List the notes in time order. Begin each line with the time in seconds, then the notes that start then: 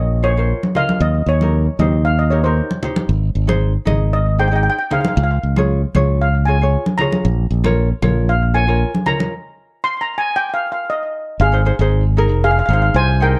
Already playing: A#1 D#5
0.23 F4 A#4 C5 C#5
0.37 F4 A#4 C5
0.63 high conga
0.75 F4 A#4 D#5 F5, low conga
0.89 high conga
1.00 D#2 D#5
1.26 D#2 C#5
1.41 D#4 G4 A#4, high conga
1.79 D#2 D#4 G4 C5 D#5, high conga, low conga
2.05 F5
2.19 D#5
2.30 D#4 G4 A#4 C#5
2.44 D#4 G4 A#4 C5
2.71 high conga
2.83 D#4 G4 C5, low conga
2.96 high conga
3.09 G#1
3.35 G#1
3.47 D#4 G#4 C5, high conga
3.85 G#1 D#4 G#4 D#5, high conga, low conga
4.13 D#5
4.38 D#4 G#4 C5 G5
4.48 D#4 G5
4.52 G#4 D#5 G5
4.63 G5
4.70 G5
4.79 G5
4.90 D#4 G#4 C5 F5, low conga
5.01 F5, high conga
5.08 F5
5.16 C#2 F5
5.23 F5
5.31 F5
5.43 C#2
5.56 F4 G#4 C#5, high conga
5.95 C#2 F4 G#4 C#5, high conga, low conga
6.22 F5
6.45 F4 G#4 C#5 G#5
6.61 F4 G#4 C#5
6.86 high conga
6.98 F4 G#4 C#5 A#5, low conga
7.12 high conga
7.25 A#1
7.51 A#1
7.64 F4 A#4 C#5, high conga
8.02 A#1 F4 A#4 C#5, high conga, low conga
8.29 F5
8.54 F4 A#4 C#5 G#5
8.67 F4 A#4 C#5
8.95 high conga
9.06 F4 A#4 C#5 A#5, low conga
9.20 high conga
9.84 C6
10.01 A#5
10.18 G#5
10.36 G5
10.54 F5
10.72 F5
10.90 D#5
11.40 G#1 G#4 F5
11.52 D#4 G#4 C5
11.65 D#4 G#4 C5
11.79 G#1 D#4 G#4 C5
12.17 D#4 G#4 A#4
12.31 F1
12.44 G#4 F5
12.51 F5
12.59 F5
12.66 G#1 D#4 F5
12.70 G#4 C5 F5
12.82 F5
12.94 C2 C5 G#5
13.20 D#4 G#4 A#4 C5 G5